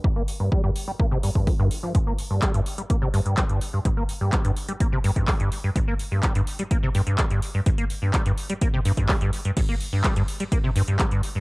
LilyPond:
<<
  \new Staff \with { instrumentName = "Acid bass" } { \clef bass \time 4/4 \key g \minor \tempo 4 = 126 g,16 bes16 r16 g,16 g16 g,16 r16 g16 bes16 c16 g,16 g,16 g16 g,16 r16 f16 | g,16 bes16 r16 g,16 g16 g,16 r16 g16 bes16 c16 g,16 g,16 g16 g,16 r16 g,16 | g,16 bes16 r16 g,16 g16 g,16 r16 g16 bes16 c16 g,16 g,16 g16 g,16 r16 g,16 | g,16 bes16 r16 g,16 g16 g,16 r16 g16 bes16 c16 g,16 g,16 g16 g,16 r16 g,16 |
g,16 bes16 r16 g,16 g16 g,16 r16 g16 bes16 c16 g,16 g,16 g16 g,16 r16 g,16 | g,16 bes16 r16 g,16 g16 g,16 r16 g16 bes16 c16 g,16 g,16 g16 g,16 r16 g,16 | }
  \new DrumStaff \with { instrumentName = "Drums" } \drummode { \time 4/4 bd8 hho8 bd8 hho8 bd8 hho16 bd16 <hho bd>8 hho8 | <hh bd>8 hho8 <hc hh bd>16 hh16 hho16 hh16 <hh bd>8 hho16 hh16 <hc hh bd>16 hh16 hho8 | <hh bd>8 hho8 <hc hh bd>16 hh16 hho16 hh16 <hh bd>8 hho16 <hh bd>16 <hc hho bd>16 hh16 hho8 | <hh bd>8 hho8 <hc hh bd>16 hh16 hho16 hh16 <hh bd>8 hho16 hh16 <hc hh bd>16 hh16 hho8 |
<hh bd>16 hh16 hho8 <hc hh bd>16 hh16 hho16 hh16 <hh bd>8 hho16 <hh bd>16 <hc hho bd>16 hh16 hho16 hh16 | <cymc hh bd>8 hho8 <hc hh bd>16 hh16 hho16 hh16 <hh bd>8 hho16 hh16 <hc hh bd>16 hh16 hho8 | }
>>